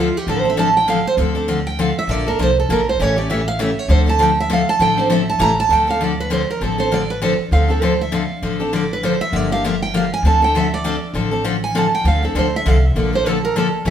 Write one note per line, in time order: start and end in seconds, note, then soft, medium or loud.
0.00 0.17 F4 medium
0.17 0.28 G4 medium
0.27 0.99 A1 medium
0.27 0.44 D3 medium
0.27 0.44 F3 medium
0.27 0.44 C4 medium
0.27 0.44 D4 medium
0.27 0.43 A4 medium
0.27 0.39 A4 medium
0.39 0.48 C5 medium
0.44 0.56 C4 soft
0.44 0.56 D4 medium
0.44 0.56 A4 medium
0.50 0.58 E5 medium
0.57 0.68 D3 medium
0.57 0.68 F3 medium
0.57 0.68 C4 medium
0.57 0.68 D4 medium
0.57 0.68 A4 medium
0.57 0.75 A5 medium
0.77 0.88 G5 medium
0.88 0.98 D3 medium
0.88 0.98 F3 medium
0.88 0.98 C4 medium
0.88 0.98 D4 medium
0.88 0.98 A4 medium
0.88 1.05 F5 medium
1.07 1.14 C5 medium
1.17 1.90 D2 medium
1.17 1.34 D3 medium
1.17 1.34 F3 medium
1.17 1.35 C4 medium
1.17 1.34 D4 medium
1.17 1.34 A4 medium
1.35 1.47 C4 soft
1.35 1.48 D4 medium
1.35 1.47 A4 medium
1.48 1.58 D3 medium
1.48 1.58 F3 medium
1.48 1.59 C4 medium
1.48 1.59 D4 medium
1.48 1.59 A4 medium
1.67 1.78 G5 medium
1.79 1.89 D3 medium
1.79 1.89 F3 medium
1.79 1.89 C4 medium
1.79 1.89 D4 medium
1.79 1.89 A4 medium
1.79 1.97 F5 medium
1.99 2.11 E5 medium
2.07 2.32 A#1 medium
2.07 2.25 D3 medium
2.07 2.25 F3 medium
2.07 2.25 A#3 medium
2.07 2.26 D4 medium
2.07 2.25 A4 medium
2.07 2.26 D5 medium
2.27 2.38 A#3 soft
2.27 2.38 D4 soft
2.27 2.38 A4 medium
2.27 2.39 A#4 medium
2.39 2.64 C2 medium
2.39 2.49 D3 medium
2.39 2.49 F3 medium
2.39 2.49 A#3 medium
2.39 2.49 D4 medium
2.39 2.50 A4 medium
2.39 2.57 C5 medium
2.60 2.70 A4 medium
2.69 2.95 A#1 medium
2.69 2.79 D3 medium
2.69 2.80 F3 medium
2.69 2.80 A#3 medium
2.69 2.80 D4 medium
2.69 2.80 A4 loud
2.69 2.87 A#4 medium
2.89 3.02 C5 medium
2.99 3.72 A1 medium
2.99 3.16 C#3 medium
2.99 3.16 E3 medium
2.99 3.16 A3 medium
2.99 3.16 C#4 medium
2.99 3.15 G4 medium
2.99 3.17 C#5 medium
3.16 3.29 A3 soft
3.16 3.29 C#4 soft
3.16 3.28 G4 medium
3.16 3.29 D5 medium
3.30 3.40 C#3 medium
3.30 3.40 E3 medium
3.30 3.40 A3 medium
3.30 3.40 C#4 medium
3.30 3.40 G4 medium
3.30 3.47 E5 medium
3.48 3.60 F5 loud
3.59 3.69 C#3 medium
3.59 3.70 E3 medium
3.59 3.70 A3 loud
3.59 3.70 C#4 medium
3.59 3.70 G4 loud
3.59 3.79 E5 medium
3.79 3.90 C#5 medium
3.88 4.61 D2 loud
3.88 4.06 D3 medium
3.88 4.06 F3 medium
3.88 4.06 C4 medium
3.88 4.06 D4 medium
3.88 4.05 A4 medium
3.88 4.01 C5 medium
4.06 4.18 C4 medium
4.06 4.19 D4 medium
4.06 4.19 A4 medium
4.06 4.22 A5 medium
4.19 4.29 D3 medium
4.19 4.30 F3 medium
4.19 4.30 C4 medium
4.19 4.30 D4 medium
4.19 4.30 A4 loud
4.19 4.38 G5 medium
4.40 4.51 E5 medium
4.50 4.60 D3 loud
4.50 4.60 F3 medium
4.50 4.60 C4 medium
4.50 4.60 D4 medium
4.50 4.60 A4 loud
4.50 4.68 F5 medium
4.69 4.81 A5 loud
4.79 5.28 A1 medium
4.79 4.96 D3 medium
4.79 4.97 F3 medium
4.79 4.97 C4 medium
4.79 4.96 D4 medium
4.79 4.96 A4 medium
4.79 4.98 G5 medium
4.97 5.09 C4 medium
4.97 5.09 D4 medium
4.97 5.09 A4 medium
4.97 5.11 C5 medium
5.10 5.20 D3 medium
5.10 5.20 F3 medium
5.10 5.21 C4 loud
5.10 5.21 D4 medium
5.10 5.21 A4 medium
5.10 5.28 E5 medium
5.29 5.41 A5 loud
5.39 5.64 A1 loud
5.39 5.50 C#3 loud
5.39 5.50 E3 medium
5.39 5.50 A3 medium
5.39 5.51 C#4 loud
5.39 5.51 G4 loud
5.39 5.58 A#5 loud
5.60 5.72 A5 loud
5.69 6.42 D2 medium
5.69 5.87 D3 medium
5.69 5.87 F3 medium
5.69 5.87 C4 medium
5.69 5.87 D4 medium
5.69 5.86 A4 medium
5.69 5.88 G5 medium
5.87 6.00 C4 soft
5.87 6.00 D4 soft
5.87 6.00 A4 medium
5.87 6.02 F5 medium
6.00 6.11 D3 medium
6.00 6.11 F3 medium
6.00 6.11 C4 medium
6.00 6.11 D4 medium
6.00 6.12 A4 medium
6.00 6.19 D5 medium
6.20 6.32 B4 medium
6.30 6.41 D3 medium
6.30 6.41 F3 medium
6.30 6.41 C4 medium
6.30 6.42 D4 medium
6.30 6.41 A4 medium
6.30 6.49 C5 medium
6.51 6.62 A#4 medium
6.61 7.33 A1 medium
6.61 6.78 D3 medium
6.61 6.78 F3 medium
6.61 6.78 C4 medium
6.61 6.78 D4 medium
6.61 6.77 A4 medium
6.61 6.79 A4 medium
6.78 6.91 C4 soft
6.78 6.91 D4 medium
6.78 6.91 A4 medium
6.78 6.92 C5 medium
6.91 7.02 D3 medium
6.91 7.02 F3 medium
6.91 7.02 C4 medium
6.91 7.02 D4 medium
6.91 7.02 A4 medium
6.91 7.09 D5 medium
7.10 7.22 B4 medium
7.22 7.32 D3 medium
7.22 7.32 F3 medium
7.22 7.32 C4 medium
7.22 7.32 D4 medium
7.22 7.33 A4 loud
7.22 7.33 C5 medium
7.51 8.24 D2 medium
7.51 7.69 D3 medium
7.51 7.69 F3 medium
7.51 7.69 C4 medium
7.51 7.68 D4 medium
7.51 7.67 A4 medium
7.51 7.69 F5 medium
7.68 7.81 C4 soft
7.68 7.81 D4 soft
7.68 7.81 A4 medium
7.68 7.83 A4 medium
7.82 7.92 D3 medium
7.82 7.92 F3 medium
7.82 7.92 C4 medium
7.82 7.93 D4 medium
7.82 7.93 A4 medium
7.82 8.00 C5 medium
8.01 8.15 E5 medium
8.12 8.22 D3 medium
8.12 8.23 F3 medium
8.12 8.23 C4 medium
8.12 8.23 D4 loud
8.12 8.23 A4 loud
8.12 8.74 F5 medium
8.42 9.15 A1 medium
8.42 8.59 D3 medium
8.42 8.59 F3 medium
8.42 8.60 C4 medium
8.42 8.59 D4 medium
8.42 8.59 A4 medium
8.60 8.72 C4 soft
8.60 8.72 D4 medium
8.60 8.72 A4 medium
8.73 8.83 D3 medium
8.73 8.83 F3 medium
8.73 8.83 C4 medium
8.73 8.83 D4 medium
8.73 8.83 A4 medium
8.73 8.91 D5 medium
8.93 9.04 B4 medium
9.03 9.13 D3 medium
9.03 9.13 F3 medium
9.03 9.14 C4 medium
9.03 9.14 D4 medium
9.03 9.14 A4 medium
9.03 9.21 C5 medium
9.21 9.36 E5 loud
9.32 10.05 G1 medium
9.32 9.50 D3 medium
9.32 9.50 F3 medium
9.32 9.50 A#3 medium
9.32 9.50 D4 medium
9.32 9.50 G4 medium
9.32 9.51 D5 medium
9.51 9.64 A#3 soft
9.51 9.64 D4 medium
9.51 9.63 G4 medium
9.51 9.64 F5 medium
9.64 9.74 D3 medium
9.64 9.74 F3 medium
9.64 9.75 A#3 medium
9.64 9.75 D4 medium
9.64 9.75 G4 medium
9.64 9.81 E5 medium
9.82 9.94 G5 medium
9.94 10.04 D3 medium
9.94 10.04 F3 medium
9.94 10.04 A#3 medium
9.94 10.04 D4 medium
9.94 10.05 G4 medium
9.94 10.12 F5 medium
10.14 10.25 G#5 medium
10.23 10.96 D2 medium
10.23 10.41 D3 medium
10.23 10.41 F3 medium
10.23 10.41 C4 medium
10.23 10.41 D4 medium
10.23 10.41 A4 medium
10.23 10.42 A5 medium
10.42 10.54 C4 soft
10.42 10.54 D4 medium
10.42 10.54 A4 medium
10.42 10.55 G5 medium
10.55 10.65 D3 medium
10.55 10.65 F3 medium
10.55 10.65 C4 medium
10.55 10.65 D4 medium
10.55 10.65 A4 medium
10.55 10.72 E5 medium
10.74 11.13 D5 medium
10.84 10.95 D3 medium
10.84 10.95 F3 medium
10.84 10.95 C4 loud
10.84 10.95 D4 loud
10.84 10.95 A4 medium
11.14 11.86 A1 medium
11.14 11.31 D3 medium
11.14 11.31 F3 medium
11.14 11.32 C4 medium
11.14 11.31 D4 medium
11.14 11.30 A4 medium
11.31 11.44 C4 soft
11.31 11.44 D4 medium
11.31 11.44 A4 medium
11.44 11.55 D3 medium
11.44 11.55 F3 medium
11.44 11.55 C4 medium
11.44 11.55 D4 medium
11.44 11.55 A4 medium
11.64 11.77 G#5 medium
11.75 11.85 D3 medium
11.75 11.85 F3 medium
11.75 11.85 C4 medium
11.75 11.86 D4 medium
11.75 11.85 A4 loud
11.75 11.93 A5 medium
11.95 12.06 G5 medium
12.04 12.29 D2 medium
12.04 12.22 D3 medium
12.04 12.22 F3 medium
12.04 12.22 C4 medium
12.04 12.22 D4 medium
12.04 12.21 A4 medium
12.04 12.23 F5 medium
12.23 12.35 C4 soft
12.23 12.35 D4 medium
12.23 12.35 A4 medium
12.23 12.36 A4 medium
12.35 12.61 D2 medium
12.35 12.46 D3 medium
12.35 12.46 F3 medium
12.35 12.46 C4 medium
12.35 12.46 D4 medium
12.35 12.46 A4 medium
12.39 12.54 C5 medium
12.56 12.68 E5 medium
12.66 12.91 C2 medium
12.66 12.76 D3 medium
12.66 12.76 F3 medium
12.66 12.76 C4 medium
12.66 12.76 D4 medium
12.66 12.76 A4 medium
12.66 12.86 F5 medium
12.86 13.00 E5 medium
12.95 13.68 A#1 medium
12.95 13.13 D3 medium
12.95 13.13 F3 medium
12.95 13.13 A#3 medium
12.95 13.12 D4 medium
12.95 13.11 A4 medium
13.00 13.15 D5 medium
13.13 13.25 A#3 medium
13.13 13.25 D4 soft
13.13 13.25 A4 medium
13.13 13.28 C5 medium
13.26 13.36 D3 medium
13.26 13.37 F3 medium
13.26 13.37 A#3 medium
13.26 13.37 D4 medium
13.26 13.37 A4 medium
13.26 13.44 A4 medium
13.45 13.56 A#4 medium
13.56 13.66 D3 medium
13.56 13.66 F3 medium
13.56 13.67 A#3 medium
13.56 13.67 D4 loud
13.56 13.67 A4 medium
13.56 13.68 A4 medium
13.85 13.90 A1 medium
13.85 13.90 C#3 medium
13.85 13.90 E3 medium
13.85 13.90 A3 medium
13.85 13.90 C#4 medium
13.85 13.90 G4 medium